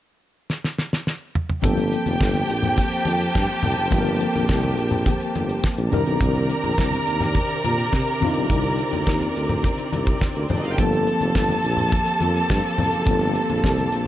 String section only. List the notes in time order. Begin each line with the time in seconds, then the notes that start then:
1.63 F3 A#3 C4 G4 A5
5.91 C3 C4 A#4 D5
10.79 F3 A#3 G4 A4